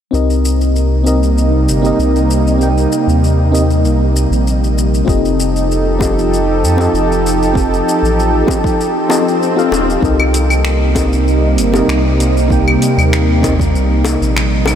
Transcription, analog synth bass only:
0.13 1.69 C2 medium
1.68 1.93 G1 medium
1.99 2.87 C2 medium
3.07 3.86 D#2 medium
3.84 4.26 C2 medium
4.31 5.03 A#1 medium
5.08 6.64 F1 medium
6.63 6.88 F2 medium
6.94 7.82 F1 medium
8.03 8.44 A1 medium
9.72 9.97 D#1 medium
10.03 11.59 C2 loud
11.57 11.82 G1 medium
11.88 12.77 C2 medium
12.98 13.76 D#2 medium
13.75 14.17 C2 medium
14.22 14.75 A#1 medium

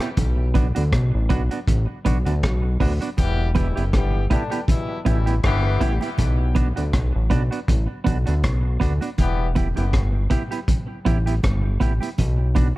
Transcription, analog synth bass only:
0.18 0.72 B1 loud
0.77 0.92 D2 medium
0.93 1.12 B1 loud
1.14 1.29 A1 medium
1.31 1.50 B1 medium
1.68 1.87 A1 loud
2.06 2.25 B1 medium
2.26 2.45 D2 loud
2.44 2.78 B1 medium
2.81 3.00 D2 medium
3.19 3.73 E1 loud
3.77 3.92 F#1 medium
3.94 4.28 G1 medium
5.07 5.41 A1 medium
5.44 5.78 G1 loud
5.81 6.00 A1 medium
6.19 6.73 B1 loud
6.78 6.93 D2 medium
6.94 7.13 B1 medium
7.15 7.30 A1 medium
7.32 7.50 B1 medium
7.69 7.88 A1 medium
8.07 8.26 B1 medium
8.28 8.46 D2 loud
8.45 8.78 B1 medium
8.82 9.00 D2 medium
9.19 9.73 E1 loud
9.78 9.92 F#1 loud
9.94 10.28 G1 medium
11.07 11.41 A1 medium
11.44 11.78 G1 medium
11.81 12.00 A1 medium
12.19 12.73 B1 loud

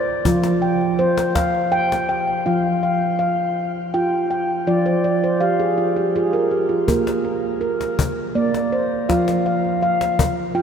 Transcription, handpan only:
0.00 0.25 A#4 medium
0.00 0.62 C5 medium
0.00 0.25 D5 medium
0.25 2.42 F3 medium
0.25 0.99 F4 medium
0.62 1.71 G5 medium
0.99 1.73 C5 medium
1.35 2.45 F5 medium
1.72 2.08 G5 medium
2.09 2.83 G5 medium
2.46 4.64 F3 medium
2.46 3.20 F4 medium
2.46 2.82 F5 soft
2.83 3.18 F5 soft
3.19 3.93 F5 medium
3.94 4.66 F4 medium
3.94 4.29 G5 medium
4.31 5.41 G5 soft
4.67 6.84 F3 medium
4.67 5.41 F4 medium
4.67 5.02 D5 medium
4.86 5.20 C5 medium
5.04 5.39 D5 soft
5.24 5.58 C5 medium
5.40 5.75 G4 medium
5.40 6.15 F5 medium
5.60 5.94 G#4 medium
5.78 6.12 F4 soft
5.96 6.31 G4 medium
6.16 6.68 F4 medium
6.16 6.50 G#4 medium
6.33 6.68 A#4 medium
6.51 6.86 G4 soft
6.69 7.04 F4 soft
6.88 7.62 A#3 medium
6.88 7.24 A#4 medium
7.25 7.60 A#4 soft
7.61 8.35 A#4 medium
8.35 9.09 A#3 medium
8.35 9.46 D5 medium
8.72 9.46 C5 medium
9.09 10.62 F3 medium
9.09 9.83 F4 medium
9.09 9.45 F5 soft
9.46 9.81 F5 soft
9.83 10.56 F5 medium
10.55 10.62 F4 medium
10.55 10.62 G5 medium

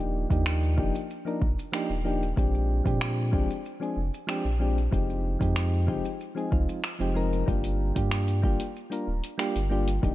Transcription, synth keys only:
0.00 0.26 F3 medium
0.00 0.26 A#3 medium
0.00 0.27 D4 medium
0.00 0.27 D#4 medium
0.00 0.27 G4 medium
0.30 0.74 F3 medium
0.30 0.74 A#3 medium
0.30 0.74 D4 medium
0.30 0.75 D#4 medium
0.30 0.75 G4 medium
0.77 0.94 F3 medium
0.77 0.95 A#3 medium
0.77 0.95 D4 medium
0.77 0.95 D#4 medium
0.77 0.96 G4 loud
1.25 1.42 F3 medium
1.25 1.42 A#3 medium
1.25 1.42 D4 medium
1.25 1.43 D#4 medium
1.25 1.43 A#4 medium
1.72 1.90 F3 medium
1.72 1.90 A#3 medium
1.72 1.91 D4 medium
1.72 1.91 D#4 medium
1.72 1.91 G4 medium
2.04 2.22 F3 medium
2.04 2.22 A#3 medium
2.04 2.23 D4 medium
2.04 2.23 D#4 medium
2.04 2.23 G4 medium
2.36 2.81 F3 medium
2.36 2.81 G#3 medium
2.36 2.82 C4 medium
2.36 2.82 D4 medium
2.36 2.82 G4 medium
2.84 3.29 F3 medium
2.84 3.29 G#3 medium
2.84 3.29 C4 medium
2.84 3.30 D4 medium
2.84 3.30 G4 medium
3.32 3.50 F3 medium
3.32 3.50 G#3 medium
3.32 3.50 C4 medium
3.32 3.50 D4 medium
3.32 3.51 G4 medium
3.80 3.97 F3 medium
3.80 3.97 G#3 medium
3.80 3.98 C4 medium
3.80 3.98 D4 medium
3.80 3.98 G#4 medium
4.27 4.45 F3 medium
4.27 4.45 G#3 medium
4.27 4.46 C4 medium
4.27 4.46 D4 medium
4.27 4.46 G4 loud
4.59 4.77 F3 medium
4.59 4.77 G#3 medium
4.59 4.78 C4 medium
4.59 4.78 D4 medium
4.59 4.78 G4 medium
4.91 5.36 F3 medium
4.91 5.36 G#3 medium
4.91 5.37 C4 medium
4.91 5.37 D#4 medium
4.91 5.37 G4 medium
5.39 5.84 F3 medium
5.39 5.84 G#3 medium
5.39 5.84 C4 medium
5.39 5.85 D#4 medium
5.39 5.85 G4 medium
5.87 6.05 F3 medium
5.87 6.05 G#3 medium
5.87 6.06 C4 medium
5.87 6.06 D#4 medium
5.87 6.06 G4 medium
6.35 6.48 F3 medium
6.35 6.49 G#3 medium
6.35 6.49 C4 medium
6.35 6.49 D#4 medium
6.35 6.49 G#4 medium
6.51 6.78 F3 medium
6.51 6.79 G#3 medium
6.51 6.79 C4 medium
6.51 6.79 D#4 medium
6.51 6.80 F4 medium
6.99 7.11 F3 medium
6.99 7.12 G#3 medium
6.99 7.12 C4 medium
6.99 7.12 D#4 medium
6.99 7.13 G4 medium
7.14 7.43 F3 medium
7.14 7.44 G#3 medium
7.14 7.44 C4 medium
7.14 7.44 D#4 medium
7.14 7.44 A#4 medium
7.46 7.91 G3 medium
7.46 7.92 A#3 medium
7.46 7.92 D4 medium
7.46 7.92 F4 medium
7.46 7.93 G4 medium
7.95 8.39 G3 medium
7.95 8.40 A#3 medium
7.95 8.40 D4 medium
7.95 8.40 F4 medium
7.95 8.40 G4 medium
8.42 8.60 G3 medium
8.42 8.60 A#3 medium
8.42 8.61 D4 medium
8.42 8.61 F4 medium
8.42 8.61 G4 loud
8.90 9.07 G3 medium
8.90 9.08 A#3 medium
8.90 9.08 D4 medium
8.90 9.08 F4 medium
8.90 9.09 A#4 medium
9.38 9.56 G3 medium
9.38 9.56 A#3 medium
9.38 9.56 D4 medium
9.38 9.57 F4 medium
9.38 9.57 G4 loud
9.70 9.88 G3 medium
9.70 9.88 A#3 medium
9.70 9.88 D4 medium
9.70 9.89 F4 medium
9.70 9.89 G4 medium
10.02 10.15 F3 medium
10.02 10.15 A#3 medium
10.02 10.15 D4 medium
10.02 10.15 D#4 medium
10.02 10.15 G4 medium

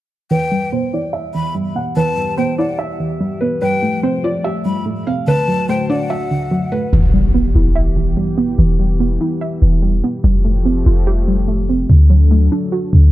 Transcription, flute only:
0.31 0.70 G5 loud
1.34 1.54 B5 medium
1.96 2.35 A5 loud
2.38 2.57 G5 medium
2.58 2.78 F#5 medium
3.62 4.01 G5 loud
4.66 4.85 B5 medium
5.27 5.66 A5 loud
5.69 5.89 G5 medium
5.90 6.89 F#5 medium

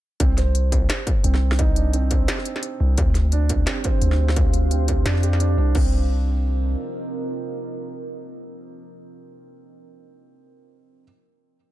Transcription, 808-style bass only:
0.20 0.88 C2 loud
1.24 2.27 C2 loud
2.80 2.96 C2 loud
2.98 3.66 D2 loud
4.02 5.05 D2 medium
5.05 5.56 F2 medium
5.58 5.74 C2 medium
5.75 6.75 C2 loud

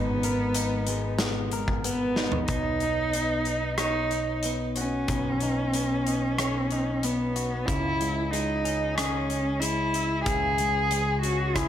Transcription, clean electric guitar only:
0.00 1.53 G#2 medium
0.00 0.88 B3 medium
0.00 0.54 D#4 medium
0.00 0.23 A#4 medium
0.24 1.52 A#4 medium
0.55 2.16 D#4 medium
0.88 2.49 G#3 medium
1.19 1.84 B3 medium
1.53 2.50 A#4 medium
1.85 2.49 B3 medium
2.18 2.50 D#4 medium
2.50 3.14 B3 soft
2.83 3.47 D#4 soft
3.15 4.44 B3 soft
3.48 4.11 D#4 soft
3.80 5.46 C#5 soft
4.13 5.41 D#4 soft
4.46 5.09 B3 soft
4.77 6.39 F#4 soft
5.10 5.73 B3 medium
5.42 6.07 D#4 soft
5.74 7.03 B3 medium
6.08 6.71 D#4 soft
6.40 8.97 C#5 medium
6.72 7.69 D#4 soft
7.04 7.69 B3 soft
7.36 7.69 F#4 medium
7.68 9.30 C#3 medium
8.01 8.32 G#3 soft
8.33 9.61 G#3 medium
8.65 9.30 C#4 soft
8.98 10.60 G#4 medium
9.31 10.92 C#4 soft
9.62 10.59 G#3 medium
9.95 11.57 E4 medium
10.28 11.68 C#3 medium
10.60 10.91 G#3 medium
10.92 11.68 G#3 medium
11.25 11.68 C#4 soft
11.56 11.68 G#4 medium

